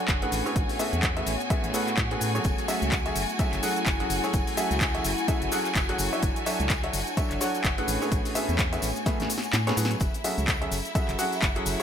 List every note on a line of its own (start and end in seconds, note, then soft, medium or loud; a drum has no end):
0.00 0.32 D4 medium
0.00 10.02 F#4 medium
0.00 3.97 C#5 medium
0.00 1.15 E5 medium
0.00 1.19 F#5 medium
0.00 10.02 G#5 medium
0.08 0.27 F#1 medium
0.08 kick loud
0.08 clap loud
0.08 closed hi-hat medium
0.08 shaker soft
0.22 0.43 A2 medium
0.22 0.43 C#4 medium
0.22 0.43 G#4 medium
0.22 0.43 A4 medium
0.22 0.43 B4 medium
0.22 0.43 F#5 loud
0.22 closed hi-hat medium
0.32 0.42 A1 loud
0.32 3.83 B3 medium
0.32 open hi-hat loud
0.32 shaker medium
0.46 0.77 A2 medium
0.46 0.77 C#4 medium
0.46 0.77 G#4 medium
0.46 0.77 A4 medium
0.46 0.77 B4 medium
0.46 0.77 C#5 medium
0.46 shaker soft
0.55 0.66 A1 loud
0.55 6.90 A3 medium
0.55 kick loud
0.55 closed hi-hat medium
0.55 shaker soft
0.69 open hi-hat medium
0.69 shaker soft
0.79 1.04 A2 medium
0.79 1.04 C#4 medium
0.79 1.04 G#4 medium
0.79 1.04 A4 medium
0.79 1.04 B4 medium
0.79 1.04 E5 medium
0.79 open hi-hat loud
0.79 shaker medium
0.93 1.23 E2 loud
0.93 closed hi-hat soft
0.93 shaker soft
1.03 kick loud
1.03 clap loud
1.03 closed hi-hat medium
1.03 shaker soft
1.17 1.31 A2 medium
1.17 1.31 C#4 medium
1.17 1.31 G#4 medium
1.17 1.31 A4 medium
1.17 1.31 B4 medium
1.17 1.31 E5 medium
1.17 closed hi-hat soft
1.27 1.37 A1 medium
1.27 6.90 G#5 medium
1.27 open hi-hat loud
1.27 shaker medium
1.40 closed hi-hat soft
1.40 shaker soft
1.50 1.72 A2 medium
1.50 1.72 C#4 medium
1.50 1.72 G#4 medium
1.50 1.72 A4 medium
1.50 1.72 B4 medium
1.50 1.72 E5 loud
1.50 kick loud
1.50 closed hi-hat medium
1.50 shaker soft
1.64 1.71 A1 medium
1.64 closed hi-hat soft
1.64 shaker soft
1.74 1.91 A2 medium
1.74 1.91 C#4 medium
1.74 1.91 G#4 medium
1.74 1.91 A4 medium
1.74 1.91 B4 medium
1.74 1.91 F#5 loud
1.74 open hi-hat loud
1.74 shaker medium
1.87 clap soft
1.87 closed hi-hat soft
1.87 shaker soft
1.97 2.16 A2 loud
1.97 kick loud
1.97 clap loud
1.97 closed hi-hat medium
1.97 shaker soft
2.11 2.32 A2 medium
2.11 2.32 C#4 medium
2.11 2.32 G#4 medium
2.11 2.32 A4 medium
2.11 2.32 B4 medium
2.11 2.32 F#5 loud
2.11 closed hi-hat medium
2.21 2.40 A2 medium
2.21 open hi-hat loud
2.21 shaker medium
2.35 2.66 F#3 medium
2.35 2.66 C#4 medium
2.35 2.66 F#4 medium
2.35 2.66 G#4 medium
2.35 2.66 A4 medium
2.35 2.66 C#5 medium
2.35 shaker soft
2.44 2.55 F#1 loud
2.44 6.90 E4 medium
2.44 kick loud
2.44 closed hi-hat medium
2.44 tambourine medium
2.44 shaker soft
2.58 closed hi-hat medium
2.58 tambourine soft
2.58 shaker soft
2.68 2.93 F#3 medium
2.68 2.93 C#4 medium
2.68 2.93 F#4 medium
2.68 2.93 G#4 medium
2.68 2.93 A4 medium
2.68 2.93 E5 medium
2.68 open hi-hat loud
2.68 tambourine loud
2.68 shaker medium
2.82 3.11 C#2 loud
2.82 closed hi-hat soft
2.82 tambourine soft
2.82 shaker soft
2.92 kick loud
2.92 clap loud
2.92 closed hi-hat medium
2.92 tambourine medium
2.92 shaker soft
3.06 3.20 F#3 medium
3.06 3.20 C#4 medium
3.06 3.20 F#4 medium
3.06 3.20 G#4 medium
3.06 3.20 A4 medium
3.06 3.20 E5 medium
3.06 closed hi-hat soft
3.06 tambourine soft
3.16 3.26 F#1 medium
3.16 open hi-hat loud
3.16 tambourine medium
3.16 shaker medium
3.29 closed hi-hat soft
3.29 tambourine soft
3.29 shaker soft
3.39 3.61 F#3 medium
3.39 3.61 C#4 medium
3.39 3.61 F#4 medium
3.39 3.61 G#4 medium
3.39 3.61 A4 medium
3.39 3.61 E5 loud
3.39 kick loud
3.39 closed hi-hat medium
3.39 tambourine medium
3.39 shaker soft
3.52 3.60 F#1 medium
3.52 8.74 F#5 medium
3.52 clap soft
3.52 closed hi-hat medium
3.52 tambourine soft
3.52 shaker soft
3.63 3.80 F#3 medium
3.63 3.80 C#4 medium
3.63 3.80 F#4 medium
3.63 3.80 G#4 medium
3.63 3.80 A4 medium
3.63 3.80 F#5 loud
3.63 open hi-hat loud
3.63 tambourine loud
3.63 shaker medium
3.76 closed hi-hat soft
3.76 tambourine soft
3.76 shaker soft
3.86 4.05 F#1 medium
3.86 kick loud
3.86 clap loud
3.86 closed hi-hat medium
3.86 tambourine medium
3.86 shaker soft
3.99 4.20 F#3 medium
3.99 4.20 C#4 medium
3.99 4.20 F#4 medium
3.99 4.20 G#4 medium
3.99 4.20 A4 medium
3.99 4.20 F#5 loud
3.99 closed hi-hat medium
3.99 tambourine soft
4.10 4.20 F#1 loud
4.10 open hi-hat loud
4.10 tambourine medium
4.10 shaker medium
4.24 4.55 F#3 medium
4.24 4.55 C#4 medium
4.24 4.55 F#4 medium
4.24 4.55 G#4 medium
4.24 4.55 A4 medium
4.24 4.55 C#5 medium
4.24 tambourine soft
4.24 shaker soft
4.33 4.44 F#1 loud
4.33 kick loud
4.33 closed hi-hat medium
4.33 tambourine medium
4.33 shaker soft
4.47 open hi-hat medium
4.47 tambourine soft
4.47 shaker soft
4.57 4.82 F#3 medium
4.57 4.82 C#4 medium
4.57 4.82 F#4 medium
4.57 4.82 G#4 medium
4.57 4.82 A4 medium
4.57 4.82 E5 loud
4.57 open hi-hat loud
4.57 tambourine medium
4.57 shaker medium
4.71 5.00 C#2 loud
4.71 closed hi-hat soft
4.71 tambourine soft
4.71 shaker soft
4.80 kick loud
4.80 clap loud
4.80 closed hi-hat medium
4.80 tambourine soft
4.80 shaker soft
4.95 5.09 F#3 medium
4.95 5.09 C#4 medium
4.95 5.09 F#4 medium
4.95 5.09 G#4 medium
4.95 5.09 A4 medium
4.95 5.09 E5 medium
4.95 closed hi-hat medium
4.95 tambourine soft
5.04 5.15 F#1 medium
5.04 open hi-hat loud
5.04 tambourine medium
5.04 shaker medium
5.18 closed hi-hat soft
5.18 tambourine soft
5.18 shaker soft
5.28 5.50 F#3 medium
5.28 5.50 C#4 medium
5.28 5.50 F#4 medium
5.28 5.50 G#4 medium
5.28 5.50 A4 medium
5.28 5.50 E5 loud
5.28 kick loud
5.28 closed hi-hat medium
5.28 tambourine soft
5.28 shaker soft
5.42 5.49 F#1 medium
5.42 closed hi-hat medium
5.42 tambourine soft
5.42 shaker soft
5.52 5.69 F#3 medium
5.52 5.69 C#4 medium
5.52 5.69 F#4 medium
5.52 5.69 G#4 medium
5.52 5.69 A4 medium
5.52 5.69 F#5 loud
5.52 open hi-hat loud
5.52 tambourine medium
5.52 shaker medium
5.65 clap soft
5.65 closed hi-hat soft
5.65 tambourine soft
5.65 shaker soft
5.75 5.94 F#1 medium
5.75 kick loud
5.75 clap loud
5.75 closed hi-hat medium
5.75 tambourine soft
5.75 shaker soft
5.89 6.09 F#3 medium
5.89 6.09 C#4 medium
5.89 6.09 F#4 medium
5.89 6.09 G#4 medium
5.89 6.09 A4 medium
5.89 6.09 F#5 loud
5.89 closed hi-hat medium
5.89 tambourine soft
5.98 6.09 F#1 loud
5.98 open hi-hat loud
5.98 tambourine medium
5.98 shaker medium
6.13 6.44 F#3 medium
6.13 6.44 D4 medium
6.13 6.44 F#4 medium
6.13 6.44 A4 medium
6.13 6.44 C#5 medium
6.13 6.44 E5 medium
6.13 tambourine soft
6.13 shaker soft
6.23 6.33 F#1 loud
6.23 7.88 D4 medium
6.23 kick loud
6.23 closed hi-hat medium
6.23 tambourine soft
6.23 shaker soft
6.36 closed hi-hat medium
6.36 tambourine soft
6.36 shaker soft
6.46 6.71 F#3 medium
6.46 6.71 D4 medium
6.46 6.71 F#4 medium
6.46 6.71 A4 medium
6.46 6.71 C#5 medium
6.46 6.71 E5 medium
6.46 open hi-hat loud
6.46 tambourine loud
6.46 shaker medium
6.58 6.89 C#2 loud
6.58 10.01 C#5 medium
6.58 closed hi-hat soft
6.58 tambourine soft
6.58 shaker soft
6.70 kick loud
6.70 clap loud
6.70 closed hi-hat medium
6.70 tambourine medium
6.70 shaker soft
6.84 6.98 F#3 medium
6.84 6.98 D4 medium
6.84 6.98 F#4 medium
6.84 6.98 A4 medium
6.84 6.98 C#5 medium
6.84 6.98 E5 medium
6.84 closed hi-hat medium
6.84 tambourine soft
6.93 7.04 F#1 medium
6.93 open hi-hat loud
6.93 tambourine loud
6.93 shaker medium
6.98 8.75 E5 medium
7.07 closed hi-hat soft
7.07 tambourine soft
7.07 shaker soft
7.17 7.39 F#3 medium
7.17 7.39 D4 medium
7.17 7.39 F#4 medium
7.17 7.39 A4 medium
7.17 7.39 C#5 medium
7.17 7.39 E5 loud
7.17 kick loud
7.17 closed hi-hat medium
7.17 tambourine medium
7.17 shaker soft
7.31 7.38 F#1 medium
7.31 clap soft
7.31 closed hi-hat medium
7.31 shaker soft
7.41 7.58 F#3 medium
7.41 7.58 D4 medium
7.41 7.58 F#4 medium
7.41 7.58 A4 medium
7.41 7.58 C#5 medium
7.41 7.58 F#5 loud
7.41 open hi-hat loud
7.41 tambourine medium
7.41 shaker medium
7.54 closed hi-hat soft
7.54 tambourine soft
7.54 shaker soft
7.64 7.83 F#1 medium
7.64 kick loud
7.64 clap loud
7.64 closed hi-hat medium
7.64 tambourine soft
7.64 shaker soft
7.78 7.98 A2 medium
7.78 7.98 C#4 medium
7.78 7.98 G#4 medium
7.78 7.98 A4 medium
7.78 7.98 B4 medium
7.78 7.98 F#5 loud
7.78 closed hi-hat medium
7.78 tambourine soft
7.88 7.98 A1 loud
7.88 10.01 B3 medium
7.88 open hi-hat loud
7.88 tambourine medium
7.88 shaker medium
8.01 8.33 A2 medium
8.01 8.33 C#4 medium
8.01 8.33 G#4 medium
8.01 8.33 A4 medium
8.01 8.33 B4 medium
8.01 8.33 C#5 medium
8.01 tambourine soft
8.01 shaker soft
8.12 8.22 A1 loud
8.12 kick loud
8.12 closed hi-hat medium
8.12 tambourine soft
8.12 shaker soft
8.25 open hi-hat medium
8.25 tambourine soft
8.25 shaker soft
8.35 8.60 A2 medium
8.35 8.60 C#4 medium
8.35 8.60 G#4 medium
8.35 8.60 A4 medium
8.35 8.60 B4 medium
8.35 8.60 E5 medium
8.35 open hi-hat loud
8.35 tambourine medium
8.35 shaker medium
8.41 10.01 A3 medium
8.49 8.78 E2 loud
8.49 closed hi-hat soft
8.49 tambourine soft
8.49 shaker soft
8.58 10.01 G#5 medium
8.58 kick loud
8.58 clap loud
8.58 closed hi-hat medium
8.58 tambourine medium
8.58 shaker soft
8.73 8.87 A2 medium
8.73 8.87 C#4 medium
8.73 8.87 G#4 medium
8.73 8.87 A4 medium
8.73 8.87 B4 medium
8.73 8.87 E5 medium
8.73 closed hi-hat medium
8.73 tambourine soft
8.73 shaker soft
8.82 8.93 A1 medium
8.82 open hi-hat loud
8.82 tambourine medium
8.82 shaker medium
8.95 closed hi-hat soft
8.95 tambourine soft
8.95 shaker soft
9.06 9.28 A2 loud
9.06 9.28 C#4 medium
9.06 9.28 G#4 medium
9.06 9.28 A4 medium
9.06 9.28 B4 medium
9.06 9.28 E5 loud
9.06 kick loud
9.06 snare medium
9.06 closed hi-hat medium
9.06 tambourine soft
9.06 shaker soft
9.20 9.27 A1 medium
9.20 snare medium
9.20 closed hi-hat medium
9.20 tambourine soft
9.20 shaker soft
9.30 open hi-hat loud
9.30 tambourine loud
9.30 shaker medium
9.38 snare medium
9.44 closed hi-hat soft
9.44 tambourine soft
9.44 shaker soft
9.53 9.72 A2 loud
9.53 snare medium
9.53 clap loud
9.53 closed hi-hat medium
9.53 tambourine soft
9.53 shaker soft
9.67 9.76 A2 medium
9.67 9.76 C#4 medium
9.67 9.76 G#4 medium
9.67 9.76 A4 medium
9.67 9.76 B4 medium
9.67 9.76 C#5 loud
9.67 snare loud
9.67 closed hi-hat medium
9.67 tambourine soft
9.67 shaker soft
9.77 9.95 A2 medium
9.77 9.94 F#3 medium
9.77 9.94 C#4 medium
9.77 9.94 G#4 medium
9.77 9.94 A4 medium
9.77 9.94 B4 medium
9.77 9.94 F#5 medium
9.77 open hi-hat loud
9.77 tambourine medium
9.77 shaker medium
9.85 snare loud
9.91 closed hi-hat soft
9.91 tambourine soft
9.91 shaker soft
10.00 10.11 F#1 loud
10.00 11.83 E4 medium
10.00 11.83 E5 medium
10.00 kick loud
10.00 closed hi-hat medium
10.00 tambourine medium
10.00 shaker soft
10.14 closed hi-hat medium
10.14 tambourine soft
10.14 shaker soft
10.24 10.49 F#3 medium
10.24 10.49 C#4 medium
10.24 10.49 F#4 medium
10.24 10.49 G#4 medium
10.24 10.49 A4 medium
10.24 10.49 E5 medium
10.24 open hi-hat loud
10.24 tambourine medium
10.24 shaker medium
10.38 10.67 C#2 loud
10.38 closed hi-hat soft
10.38 tambourine soft
10.38 shaker soft
10.48 kick loud
10.48 clap loud
10.48 closed hi-hat medium
10.48 tambourine medium
10.48 shaker soft
10.62 10.76 F#3 medium
10.62 10.76 C#4 medium
10.62 10.76 F#4 medium
10.62 10.76 G#4 medium
10.62 10.76 A4 medium
10.62 10.76 E5 medium
10.62 closed hi-hat medium
10.62 tambourine soft
10.72 10.82 F#1 medium
10.72 open hi-hat loud
10.72 tambourine medium
10.72 shaker medium
10.85 closed hi-hat soft
10.85 tambourine soft
10.85 shaker soft
10.95 11.17 F#3 medium
10.95 11.17 C#4 medium
10.95 11.17 F#4 medium
10.95 11.17 G#4 medium
10.95 11.17 A4 medium
10.95 11.17 E5 loud
10.95 kick loud
10.95 closed hi-hat medium
10.95 tambourine medium
10.95 shaker soft
11.09 11.16 F#1 medium
11.09 clap soft
11.09 closed hi-hat medium
11.09 tambourine soft
11.09 shaker soft
11.19 11.36 F#3 medium
11.19 11.36 C#4 medium
11.19 11.36 F#4 medium
11.19 11.36 G#4 medium
11.19 11.36 A4 medium
11.19 11.36 F#5 loud
11.19 open hi-hat loud
11.19 tambourine medium
11.19 shaker medium
11.32 closed hi-hat soft
11.32 tambourine soft
11.32 shaker soft
11.42 11.61 F#1 medium
11.42 kick loud
11.42 clap loud
11.42 closed hi-hat medium
11.42 tambourine medium
11.42 shaker soft
11.55 11.76 F#3 medium
11.55 11.76 C#4 medium
11.55 11.76 F#4 medium
11.55 11.76 G#4 medium
11.55 11.76 A4 medium
11.55 11.76 F#5 loud
11.55 closed hi-hat medium
11.55 tambourine soft
11.66 11.76 F#1 loud
11.66 open hi-hat loud
11.66 tambourine medium
11.66 shaker medium
11.80 11.83 F#3 medium
11.80 11.83 C#4 medium
11.80 11.83 F#4 medium
11.80 11.83 A4 medium
11.80 11.83 C#5 medium